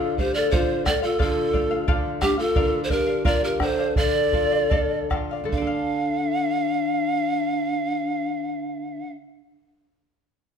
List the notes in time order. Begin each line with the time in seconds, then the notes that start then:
Already playing: D3 F4 A4 C5 D5 F5
0.18 A3 F4 G4 C5 D5 F5, bombo low
0.34 F4 A4 C5 D5 F5
0.51 D3 F4 A4 C5 D5 F5, bombo low
0.85 A3 F4 A4 C5 D5 F5, bombo rim, bombo low
1.02 F4 A4 C5 F5
1.19 D3 F4 A4 C5 D5 F5, bombo low
1.53 A3 F4 C5 D5 F5, bombo low
1.71 F4 C5 F5
1.88 D3 F4 A4 C5 D5 F5, bombo low
2.21 A3 D4 F4 G4 C5 D5 F5, bombo rim, bombo low
2.38 F4 A4 C5 F5
2.55 D3 A#4 D5 F5, bombo low
2.84 A4 C5
2.89 D4 G4 A#4 D5 F5, bombo low
3.07 D5 F5
3.25 F4 A#4 D5 F5, bombo low
3.44 G4 A#4
3.60 D4 A4 A#4 C5 D5 F5, bombo rim, bombo low
3.79 D5 F5
3.96 D3 A4 D5 F5, bombo low
4.33 F4 A4 D5 F5, bombo low
4.51 D5 F5
4.70 A4 D5 F5, bombo low
5.10 F4 A4 D5 F5, bombo rim, bombo low
5.31 D5 F5
5.44 D3 A4
5.48 A3
5.52 D4 F5, bombo low
5.57 F4 D5
5.62 A4
5.67 F5